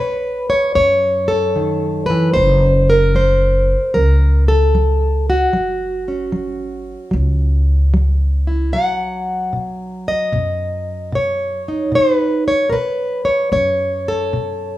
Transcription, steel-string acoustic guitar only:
0, 0, Header, 1, 2, 480
1, 0, Start_track
1, 0, Tempo, 800000
1, 1409, Time_signature, 4, 2, 24, 8
1, 8866, End_track
2, 0, Start_track
2, 0, Title_t, "Steel-string acoustic guitar"
2, 0, Program_c, 0, 25
2, 0, Note_on_c, 0, 47, 63
2, 0, Note_on_c, 0, 71, 87
2, 293, Note_off_c, 0, 71, 0
2, 298, Note_on_c, 0, 73, 89
2, 416, Note_off_c, 0, 47, 0
2, 445, Note_off_c, 0, 73, 0
2, 449, Note_on_c, 0, 47, 72
2, 453, Note_on_c, 0, 73, 88
2, 768, Note_on_c, 0, 69, 100
2, 898, Note_off_c, 0, 47, 0
2, 934, Note_on_c, 0, 51, 62
2, 1234, Note_off_c, 0, 73, 0
2, 1237, Note_on_c, 0, 71, 92
2, 1254, Note_off_c, 0, 51, 0
2, 1260, Note_on_c, 0, 52, 63
2, 1399, Note_off_c, 0, 71, 0
2, 1401, Note_on_c, 0, 72, 108
2, 1407, Note_off_c, 0, 69, 0
2, 1413, Note_off_c, 0, 52, 0
2, 1416, Note_on_c, 0, 54, 74
2, 1727, Note_off_c, 0, 72, 0
2, 1738, Note_on_c, 0, 70, 90
2, 1861, Note_off_c, 0, 54, 0
2, 1887, Note_on_c, 0, 54, 69
2, 1894, Note_on_c, 0, 72, 82
2, 2336, Note_off_c, 0, 54, 0
2, 2357, Note_off_c, 0, 70, 0
2, 2365, Note_on_c, 0, 70, 89
2, 2369, Note_on_c, 0, 54, 74
2, 2371, Note_off_c, 0, 72, 0
2, 2687, Note_off_c, 0, 70, 0
2, 2690, Note_on_c, 0, 69, 89
2, 2817, Note_off_c, 0, 54, 0
2, 2848, Note_on_c, 0, 54, 76
2, 3170, Note_off_c, 0, 69, 0
2, 3178, Note_on_c, 0, 66, 82
2, 3296, Note_off_c, 0, 54, 0
2, 3320, Note_on_c, 0, 54, 75
2, 3648, Note_on_c, 0, 61, 42
2, 3772, Note_off_c, 0, 54, 0
2, 3794, Note_on_c, 0, 54, 66
2, 4249, Note_off_c, 0, 54, 0
2, 4267, Note_on_c, 0, 54, 68
2, 4725, Note_off_c, 0, 54, 0
2, 4762, Note_on_c, 0, 54, 77
2, 5082, Note_off_c, 0, 66, 0
2, 5084, Note_on_c, 0, 64, 45
2, 5212, Note_off_c, 0, 54, 0
2, 5225, Note_off_c, 0, 64, 0
2, 5226, Note_off_c, 0, 61, 0
2, 5235, Note_on_c, 0, 47, 76
2, 5238, Note_on_c, 0, 78, 100
2, 5242, Note_on_c, 0, 54, 51
2, 5689, Note_off_c, 0, 47, 0
2, 5717, Note_on_c, 0, 47, 66
2, 5790, Note_off_c, 0, 78, 0
2, 5790, Note_on_c, 0, 76, 100
2, 6043, Note_off_c, 0, 76, 0
2, 6048, Note_on_c, 0, 75, 99
2, 6170, Note_off_c, 0, 47, 0
2, 6195, Note_on_c, 0, 47, 75
2, 6648, Note_off_c, 0, 47, 0
2, 6674, Note_on_c, 0, 47, 76
2, 6686, Note_off_c, 0, 75, 0
2, 6692, Note_on_c, 0, 73, 92
2, 7010, Note_on_c, 0, 63, 49
2, 7128, Note_off_c, 0, 47, 0
2, 7151, Note_on_c, 0, 47, 79
2, 7169, Note_off_c, 0, 73, 0
2, 7172, Note_on_c, 0, 72, 101
2, 7292, Note_off_c, 0, 72, 0
2, 7292, Note_on_c, 0, 71, 101
2, 7484, Note_off_c, 0, 71, 0
2, 7486, Note_on_c, 0, 73, 86
2, 7504, Note_off_c, 0, 63, 0
2, 7607, Note_off_c, 0, 47, 0
2, 7617, Note_on_c, 0, 70, 63
2, 7627, Note_on_c, 0, 47, 65
2, 7633, Note_off_c, 0, 73, 0
2, 7635, Note_on_c, 0, 71, 84
2, 7645, Note_off_c, 0, 70, 0
2, 7947, Note_off_c, 0, 71, 0
2, 7950, Note_on_c, 0, 73, 81
2, 8085, Note_off_c, 0, 47, 0
2, 8108, Note_off_c, 0, 73, 0
2, 8111, Note_on_c, 0, 47, 74
2, 8115, Note_on_c, 0, 73, 96
2, 8450, Note_on_c, 0, 69, 97
2, 8568, Note_off_c, 0, 47, 0
2, 8599, Note_on_c, 0, 47, 77
2, 8866, Note_off_c, 0, 47, 0
2, 8866, Note_off_c, 0, 54, 0
2, 8866, Note_off_c, 0, 69, 0
2, 8866, Note_off_c, 0, 73, 0
2, 8866, End_track
0, 0, End_of_file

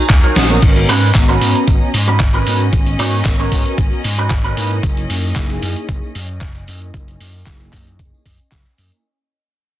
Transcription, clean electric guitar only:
0, 0, Header, 1, 2, 480
1, 0, Start_track
1, 0, Key_signature, 5, "minor"
1, 0, Tempo, 526316
1, 570, Time_signature, 4, 2, 24, 8
1, 8931, End_track
2, 0, Start_track
2, 0, Title_t, "Clean electric guitar"
2, 0, Program_c, 0, 27
2, 90, Note_on_c, 0, 78, 78
2, 213, Note_on_c, 0, 70, 84
2, 215, Note_on_c, 0, 66, 88
2, 216, Note_on_c, 0, 63, 87
2, 216, Note_on_c, 0, 73, 99
2, 313, Note_off_c, 0, 78, 0
2, 331, Note_on_c, 0, 75, 75
2, 554, Note_off_c, 0, 75, 0
2, 569, Note_off_c, 0, 63, 0
2, 569, Note_off_c, 0, 66, 0
2, 570, Note_off_c, 0, 70, 0
2, 571, Note_off_c, 0, 73, 0
2, 809, Note_on_c, 0, 70, 92
2, 811, Note_on_c, 0, 66, 93
2, 812, Note_on_c, 0, 71, 117
2, 815, Note_on_c, 0, 61, 102
2, 991, Note_off_c, 0, 61, 0
2, 992, Note_off_c, 0, 66, 0
2, 992, Note_off_c, 0, 70, 0
2, 993, Note_off_c, 0, 71, 0
2, 1171, Note_on_c, 0, 71, 89
2, 1173, Note_on_c, 0, 70, 70
2, 1176, Note_on_c, 0, 66, 72
2, 1179, Note_on_c, 0, 61, 77
2, 1528, Note_off_c, 0, 61, 0
2, 1529, Note_off_c, 0, 66, 0
2, 1529, Note_off_c, 0, 70, 0
2, 1530, Note_off_c, 0, 71, 0
2, 1892, Note_on_c, 0, 70, 101
2, 1894, Note_on_c, 0, 66, 89
2, 1896, Note_on_c, 0, 71, 120
2, 1897, Note_on_c, 0, 61, 94
2, 2009, Note_off_c, 0, 61, 0
2, 2009, Note_off_c, 0, 66, 0
2, 2010, Note_off_c, 0, 70, 0
2, 2011, Note_off_c, 0, 71, 0
2, 2132, Note_on_c, 0, 70, 75
2, 2134, Note_on_c, 0, 66, 75
2, 2137, Note_on_c, 0, 71, 92
2, 2138, Note_on_c, 0, 61, 75
2, 2431, Note_off_c, 0, 61, 0
2, 2431, Note_off_c, 0, 66, 0
2, 2432, Note_off_c, 0, 70, 0
2, 2433, Note_off_c, 0, 71, 0
2, 2728, Note_on_c, 0, 73, 113
2, 2731, Note_on_c, 0, 70, 93
2, 2733, Note_on_c, 0, 66, 86
2, 2736, Note_on_c, 0, 61, 98
2, 2911, Note_off_c, 0, 61, 0
2, 2911, Note_off_c, 0, 66, 0
2, 2912, Note_off_c, 0, 70, 0
2, 2913, Note_off_c, 0, 73, 0
2, 3093, Note_on_c, 0, 73, 92
2, 3097, Note_on_c, 0, 70, 73
2, 3100, Note_on_c, 0, 66, 70
2, 3102, Note_on_c, 0, 61, 78
2, 3449, Note_off_c, 0, 61, 0
2, 3450, Note_off_c, 0, 66, 0
2, 3451, Note_off_c, 0, 70, 0
2, 3451, Note_off_c, 0, 73, 0
2, 3815, Note_on_c, 0, 70, 91
2, 3817, Note_on_c, 0, 66, 86
2, 3818, Note_on_c, 0, 71, 112
2, 3820, Note_on_c, 0, 61, 100
2, 3930, Note_off_c, 0, 61, 0
2, 3930, Note_off_c, 0, 66, 0
2, 3931, Note_off_c, 0, 70, 0
2, 3932, Note_off_c, 0, 71, 0
2, 4052, Note_on_c, 0, 71, 98
2, 4056, Note_on_c, 0, 70, 74
2, 4060, Note_on_c, 0, 66, 75
2, 4064, Note_on_c, 0, 61, 77
2, 4351, Note_off_c, 0, 61, 0
2, 4352, Note_off_c, 0, 66, 0
2, 4352, Note_off_c, 0, 70, 0
2, 4353, Note_off_c, 0, 71, 0
2, 8931, End_track
0, 0, End_of_file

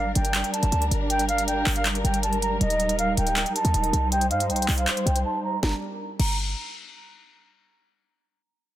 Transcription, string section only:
0, 0, Header, 1, 2, 480
1, 0, Start_track
1, 0, Key_signature, -2, "minor"
1, 0, Tempo, 377358
1, 1399, Time_signature, 4, 2, 24, 8
1, 11136, End_track
2, 0, Start_track
2, 0, Title_t, "String section"
2, 0, Program_c, 0, 48
2, 0, Note_on_c, 0, 55, 78
2, 0, Note_on_c, 0, 62, 74
2, 0, Note_on_c, 0, 70, 88
2, 3282, Note_off_c, 0, 62, 0
2, 3321, Note_on_c, 0, 63, 71
2, 5190, Note_off_c, 0, 70, 0
2, 5241, Note_on_c, 0, 72, 90
2, 7110, Note_off_c, 0, 55, 0
2, 7122, Note_off_c, 0, 63, 0
2, 7141, Note_off_c, 0, 72, 0
2, 7157, Note_on_c, 0, 55, 72
2, 7157, Note_on_c, 0, 62, 64
2, 7157, Note_on_c, 0, 70, 77
2, 7381, Note_off_c, 0, 55, 0
2, 7381, Note_off_c, 0, 70, 0
2, 7382, Note_off_c, 0, 62, 0
2, 11136, End_track
0, 0, End_of_file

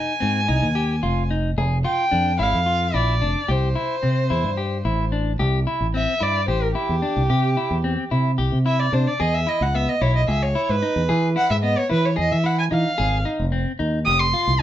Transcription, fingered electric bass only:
0, 0, Header, 1, 2, 480
1, 0, Start_track
1, 0, Tempo, 545455
1, 1387, Time_signature, 7, 3, 24, 8
1, 6664, Tempo, 541028
1, 12919, End_track
2, 0, Start_track
2, 0, Title_t, "Fingered electric bass"
2, 0, Program_c, 0, 33
2, 196, Note_on_c, 0, 44, 82
2, 413, Note_off_c, 0, 44, 0
2, 431, Note_on_c, 0, 36, 73
2, 539, Note_off_c, 0, 36, 0
2, 548, Note_on_c, 0, 39, 77
2, 880, Note_off_c, 0, 39, 0
2, 908, Note_on_c, 0, 29, 79
2, 1353, Note_off_c, 0, 29, 0
2, 1388, Note_on_c, 0, 29, 101
2, 1610, Note_off_c, 0, 29, 0
2, 1869, Note_on_c, 0, 41, 78
2, 2091, Note_off_c, 0, 41, 0
2, 2109, Note_on_c, 0, 32, 83
2, 2220, Note_off_c, 0, 32, 0
2, 2230, Note_on_c, 0, 41, 70
2, 2562, Note_off_c, 0, 41, 0
2, 2591, Note_on_c, 0, 34, 79
2, 2811, Note_off_c, 0, 34, 0
2, 2830, Note_on_c, 0, 29, 82
2, 2940, Note_off_c, 0, 29, 0
2, 3069, Note_on_c, 0, 36, 89
2, 3291, Note_off_c, 0, 36, 0
2, 3549, Note_on_c, 0, 48, 85
2, 3770, Note_off_c, 0, 48, 0
2, 3791, Note_on_c, 0, 40, 81
2, 3901, Note_off_c, 0, 40, 0
2, 3909, Note_on_c, 0, 43, 68
2, 4241, Note_off_c, 0, 43, 0
2, 4267, Note_on_c, 0, 33, 86
2, 4711, Note_off_c, 0, 33, 0
2, 4749, Note_on_c, 0, 36, 87
2, 4970, Note_off_c, 0, 36, 0
2, 5109, Note_on_c, 0, 33, 71
2, 5329, Note_off_c, 0, 33, 0
2, 5468, Note_on_c, 0, 43, 73
2, 5688, Note_off_c, 0, 43, 0
2, 5702, Note_on_c, 0, 33, 79
2, 5924, Note_off_c, 0, 33, 0
2, 6065, Note_on_c, 0, 40, 80
2, 6175, Note_off_c, 0, 40, 0
2, 6305, Note_on_c, 0, 36, 78
2, 6414, Note_off_c, 0, 36, 0
2, 6421, Note_on_c, 0, 48, 102
2, 6643, Note_off_c, 0, 48, 0
2, 6783, Note_on_c, 0, 40, 73
2, 7005, Note_off_c, 0, 40, 0
2, 7146, Note_on_c, 0, 48, 75
2, 7367, Note_off_c, 0, 48, 0
2, 7386, Note_on_c, 0, 36, 72
2, 7496, Note_off_c, 0, 36, 0
2, 7506, Note_on_c, 0, 48, 70
2, 7839, Note_off_c, 0, 48, 0
2, 7866, Note_on_c, 0, 48, 85
2, 7977, Note_off_c, 0, 48, 0
2, 8112, Note_on_c, 0, 40, 90
2, 8332, Note_off_c, 0, 40, 0
2, 8471, Note_on_c, 0, 37, 80
2, 8691, Note_off_c, 0, 37, 0
2, 8831, Note_on_c, 0, 35, 83
2, 9051, Note_off_c, 0, 35, 0
2, 9069, Note_on_c, 0, 37, 76
2, 9291, Note_off_c, 0, 37, 0
2, 9433, Note_on_c, 0, 44, 78
2, 9542, Note_off_c, 0, 44, 0
2, 9669, Note_on_c, 0, 40, 69
2, 9780, Note_off_c, 0, 40, 0
2, 9792, Note_on_c, 0, 52, 107
2, 10012, Note_off_c, 0, 52, 0
2, 10151, Note_on_c, 0, 44, 78
2, 10371, Note_off_c, 0, 44, 0
2, 10513, Note_on_c, 0, 52, 78
2, 10733, Note_off_c, 0, 52, 0
2, 10753, Note_on_c, 0, 40, 80
2, 10861, Note_off_c, 0, 40, 0
2, 10873, Note_on_c, 0, 52, 75
2, 11203, Note_off_c, 0, 52, 0
2, 11230, Note_on_c, 0, 52, 87
2, 11340, Note_off_c, 0, 52, 0
2, 11474, Note_on_c, 0, 32, 90
2, 11693, Note_off_c, 0, 32, 0
2, 11829, Note_on_c, 0, 29, 72
2, 12049, Note_off_c, 0, 29, 0
2, 12187, Note_on_c, 0, 39, 73
2, 12408, Note_off_c, 0, 39, 0
2, 12430, Note_on_c, 0, 29, 80
2, 12649, Note_off_c, 0, 29, 0
2, 12788, Note_on_c, 0, 36, 78
2, 12897, Note_off_c, 0, 36, 0
2, 12919, End_track
0, 0, End_of_file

